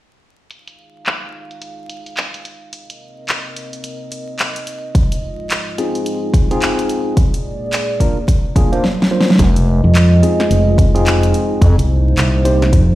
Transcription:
0.51 D#4 G#4 F5, closed hi-hat
0.68 closed hi-hat
1.06 clap, closed hi-hat
1.51 closed hi-hat
1.62 closed hi-hat
1.90 closed hi-hat
2.06 closed hi-hat
2.17 clap, closed hi-hat
2.34 closed hi-hat
2.45 closed hi-hat
2.73 C4 A#4 D#5, closed hi-hat
2.90 closed hi-hat
3.29 clap, closed hi-hat
3.56 closed hi-hat
3.73 closed hi-hat
3.84 closed hi-hat
4.12 closed hi-hat
4.39 clap, closed hi-hat
4.56 closed hi-hat
4.67 closed hi-hat
4.95 G#3 F4, kick, closed hi-hat
5.12 closed hi-hat
5.50 clap, closed hi-hat
5.78 C4 D#4 F4 G#4, closed hi-hat
5.95 closed hi-hat
6.06 closed hi-hat
6.34 kick, closed hi-hat
6.51 C4 D#4 F4 G#4, closed hi-hat
6.62 clap, closed hi-hat
6.79 closed hi-hat
6.89 closed hi-hat
7.17 A#3 G#4 D5, kick, closed hi-hat
7.34 closed hi-hat
7.73 clap, closed hi-hat
8.00 A#3 D4 F4 A#4, kick, closed hi-hat
8.28 kick, closed hi-hat
8.56 A#3 D4 F4 G#4, kick, closed hi-hat
8.72 A#3 D4 F4 C5, closed hi-hat
8.84 snare
9.02 snare
9.11 A#3 D4 F4 C5
9.21 snare
9.30 snare
9.36 F1, kick, snare, closed hi-hat
9.40 G#3 F4 D#5, snare
9.56 closed hi-hat
9.84 F2
9.95 clap, closed hi-hat
10.22 C4 D#4 F4 G#4, closed hi-hat
10.40 snare, closed hi-hat
10.50 F1, closed hi-hat
10.78 kick, closed hi-hat
10.95 C4 D#4 F4 G#4, closed hi-hat
11.07 clap, closed hi-hat
11.23 closed hi-hat
11.34 closed hi-hat
11.62 F2 A#3 D#4 C5, kick, closed hi-hat
11.78 C2, closed hi-hat
12.17 C2, clap, closed hi-hat
12.45 C4 D#4 G4 C5, closed hi-hat
12.62 snare, closed hi-hat
12.73 F2, kick, closed hi-hat

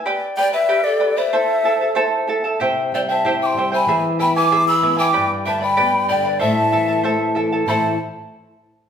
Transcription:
0.06 G4 B4 D5 G5 B5
0.37 B4 D5 G5 B5
0.53 B4 D5 E5 B5
0.69 G4 B4 D5 G5 B5
0.84 A4 D5
1.00 B4 D5 G5 B5
1.16 B4 C5 D5 E5 B5
1.33 E4 A4 C5 E5 A5
1.64 E4 A4 E5 A5
1.81 E4 A4 A5
1.95 E4 A4 C5 E5 A5
2.27 E4 A4 E5 A5
2.44 E4 A4 A5
2.60 C3 E4 G4 C5 E5 G5
2.92 G3 E4 C5 D5 E5 G5
3.09 E4 C5 E5 G5 A5
3.24 E4 G4 C5 E5 G5
3.41 G5 D6
3.46 C6
3.55 G3 E4 C5 E5
3.59 G5
3.72 E4 C5 G5 G#5 B5
3.87 E3 E4 G#4 B4 E5 G#5
4.19 B3 E4 B4 E5 G5 G#5 B5
4.36 E4 B4 G#5 D6
4.52 E4 G#4 B4 E5 G#5
4.68 B5 E6
4.82 B3 E4 B4 E5 G#5
4.97 E4 B4 G5 G#5 D6
5.13 G2 G4 B4 D5 G5 B5
5.46 D3 B4 D5 E5 G5 A5 B5
5.61 B4 D5 G5 B5
5.77 B3 G4 B4 D5 G5 B5
6.08 D3 B4 D5 G5 B5
6.25 B4 D5 B5
6.39 A2 E4 A4 C5 E5 A5
6.72 E3 E4 A4 E5 A5
6.88 E4 A4 A5
7.03 A3 E4 A4 C5 E5 A5
7.35 E3 E4 A4 E5 A5
7.52 E4 A4 A5
7.66 A2 E3 A3 E4 A4 C5 E5 B5
7.70 A5

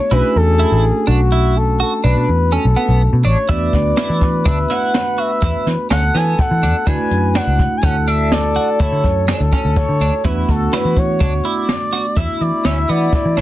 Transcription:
Already playing: C#5
0.11 B1 A3 C#4 D4 E4 F#4 G#4 B4
0.36 E2 A4
0.59 E4
0.72 A1
1.07 B1 D4 F#4
1.32 E4
1.57 A4
1.80 F#4 A4
2.04 B1 D4 B4
2.17 B2
2.29 E2
2.52 C#4 A4
2.65 B1
2.76 B3
2.88 B1
3.13 B2
3.25 A1 D4 C#5
3.49 E2 A3 B3 D4 E4 F#4 B4 D5, kick, closed hi-hat
3.73 D2, kick, snare, closed hi-hat
3.97 E4, snare, closed hi-hat
4.09 E3
4.21 kick, snare, closed hi-hat
4.46 D2 D4 E5, kick, closed hi-hat
4.70 E4 F#5, snare, closed hi-hat
4.94 snare, closed hi-hat
5.18 F#4 E5, closed hi-hat
5.42 E2 E4, kick, snare, closed hi-hat
5.66 E3, snare, closed hi-hat
5.90 D2 C#4 A4 F#5, snare, closed hi-hat
6.15 E3 B3 G#5, snare, closed hi-hat
6.39 F#5, kick, closed hi-hat
6.51 E3
6.63 E2 D4, closed hi-hat
6.87 D2 A3 D4 E4 F#4 B4 G#5, kick, closed hi-hat
7.11 F#2, closed hi-hat
7.35 D4 F#5, snare, closed hi-hat
7.47 C#2
7.59 kick, snare, closed hi-hat
7.77 G#5
7.83 D2 C#4 A4 F#5, kick, closed hi-hat
8.07 D4 E5, closed hi-hat
8.32 D5, snare, closed hi-hat
8.56 F#4, closed hi-hat
8.80 D2 E4 C#5, kick, closed hi-hat
8.92 D3
9.04 F#2, kick, closed hi-hat
9.28 D4 A4, snare, closed hi-hat
9.40 D2
9.52 C#4, kick, snare, closed hi-hat
9.65 D2
9.76 C#5, kick, closed hi-hat
9.89 D3
10.00 D2 D4, closed hi-hat
10.24 E2 A3 B3 D4 E4 F#4 B4, kick, closed hi-hat
10.49 D2 A4, kick, closed hi-hat
10.73 E4 B4, snare, closed hi-hat
10.85 E3
10.97 C#5, kick, closed hi-hat
11.20 D2 D4, kick, closed hi-hat
11.45 E4 D5, closed hi-hat
11.69 snare, closed hi-hat
11.93 F#4, snare, closed hi-hat
12.16 E2 E4 E5, kick, snare, closed hi-hat
12.40 E3 D5, closed hi-hat
12.65 D2 C#4 E5, snare, closed hi-hat
12.89 E3 B3 D5, closed hi-hat
13.13 kick, snare, closed hi-hat
13.25 E3
13.37 C2 D4 C#5, snare, closed hi-hat

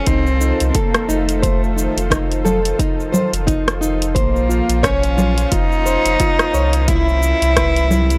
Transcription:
Already playing: D#3 F3 F4 A4 C5
0.07 C2 C4 D#4, kick, closed hi-hat, shaker
0.27 shaker
0.41 D#4, shaker
0.60 C2, closed hi-hat, shaker
0.69 C4
0.75 A#3 A4, kick, closed hi-hat, shaker
0.94 cross-stick, closed hi-hat, shaker
1.09 F1 A3 D#4, shaker
1.29 closed hi-hat, shaker
1.42 C5, kick, closed hi-hat, shaker
1.64 shaker
1.76 D#4, shaker
1.97 F1, closed hi-hat, shaker
2.10 D#4, kick, cross-stick, closed hi-hat, shaker
2.32 closed hi-hat, shaker
2.45 A4, low conga, shaker
2.65 closed hi-hat, shaker
2.79 D#4, kick, closed hi-hat, shaker
3.00 shaker
3.12 C5, low conga, shaker
3.33 F1, closed hi-hat, shaker
3.47 D#4, kick, closed hi-hat, shaker
3.68 cross-stick, closed hi-hat, shaker
3.81 D#4, shaker
4.02 closed hi-hat, shaker
4.15 A#1 A#3 C#4 F4 C5, kick, closed hi-hat, shaker
4.36 shaker
4.49 F4, shaker
4.69 A#1, closed hi-hat, shaker
4.83 C#4 C#5, kick, cross-stick, closed hi-hat, shaker
5.03 closed hi-hat, shaker
5.17 F4, low conga, shaker
5.38 closed hi-hat, shaker
5.52 F1 D#4 F4, kick, closed hi-hat, shaker
5.72 shaker
5.86 C5, shaker
6.05 F1, closed hi-hat, shaker
6.20 F4, kick, closed hi-hat, shaker
6.39 cross-stick, closed hi-hat, shaker
6.54 C2 C#5, shaker
6.73 closed hi-hat, shaker
6.88 C3 E3 G3 E4, kick, closed hi-hat, shaker
7.08 shaker
7.22 E4, shaker
7.42 C2, closed hi-hat, shaker
7.56 B4, kick, cross-stick, closed hi-hat, shaker
7.76 closed hi-hat, shaker
7.91 E4, low conga, shaker
8.10 closed hi-hat, shaker

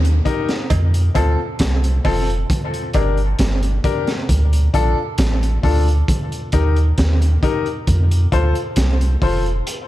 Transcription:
Already playing: D#2
0.05 closed hi-hat
0.25 D#4 G4 A#4, kick, closed hi-hat
0.49 snare, closed hi-hat
0.70 F2, kick, closed hi-hat, cowbell
0.94 closed hi-hat
1.15 D2 C4 F4 A4, kick, closed hi-hat, cowbell
1.59 C2, kick, snare, closed hi-hat
1.84 closed hi-hat
2.04 F1 C4 F4 A4, kick, open hi-hat, cowbell
2.30 closed hi-hat
2.50 kick, closed hi-hat
2.74 closed hi-hat
2.94 G1 D4 G4 A#4, kick, closed hi-hat, cowbell
3.17 closed hi-hat
3.39 G1, kick, snare, closed hi-hat
3.63 closed hi-hat
3.84 D4 G4 A#4, kick, closed hi-hat
4.07 snare, closed hi-hat
4.29 D2, kick, closed hi-hat
4.53 closed hi-hat
4.74 A#1 D4 F4 A4, kick, closed hi-hat
5.18 A1, kick, snare, closed hi-hat
5.43 closed hi-hat
5.63 D2 D4 F4 A4, kick, open hi-hat
5.88 closed hi-hat
6.08 kick, closed hi-hat
6.32 closed hi-hat
6.52 D#2 D#4 G4 A#4, kick, closed hi-hat
6.76 closed hi-hat
6.98 D#2, kick, snare, closed hi-hat
7.22 closed hi-hat
7.43 D#4 G4 A#4, kick, closed hi-hat
7.66 closed hi-hat
7.87 F2, kick, closed hi-hat
8.11 closed hi-hat
8.32 D2 F4 A4 C5, kick, closed hi-hat
8.55 closed hi-hat
8.76 C2, kick, snare, closed hi-hat
9.01 closed hi-hat
9.22 F1 F4 A4 C5, kick, open hi-hat
9.46 closed hi-hat
9.67 closed hi-hat

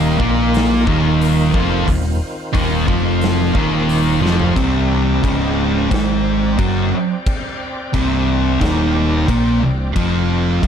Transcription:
Already playing: D#1 D#2 D#3 A#3 F4
0.19 A#1 A#2 A#3, kick
0.54 snare, open hi-hat
0.87 D#1 D#2 D#3, kick
1.21 open hi-hat
1.53 F1 F2 F3, kick
1.87 D#1 D#2 C4, kick, open hi-hat
2.54 D#1 D#2 D#3, kick, open hi-hat
2.88 F1 F2 F3, kick
3.21 snare, open hi-hat
3.55 D#1 D#2 D#3, kick
3.89 open hi-hat
4.20 F1 F2 F3
4.26 snare
4.40 floor tom
4.55 C1 C2 C3 C4 D5 G5, kick, crash
5.23 C#1 C#2 C#3, kick, crash
5.90 G#1 G#2 G#3, kick, crash
5.94 snare
6.58 F#1 F#2 F#3, kick, crash
7.27 kick, crash
7.93 C1 C2 C3, kick, crash
8.61 D#1 D#2 D#3, kick, snare, crash
9.28 A#1 A#2 A#3, kick, crash
9.60 C1 C2
9.94 F1 F2 F3 F4 G5, kick, crash
10.63 F#1 F#2 F#3, kick, crash

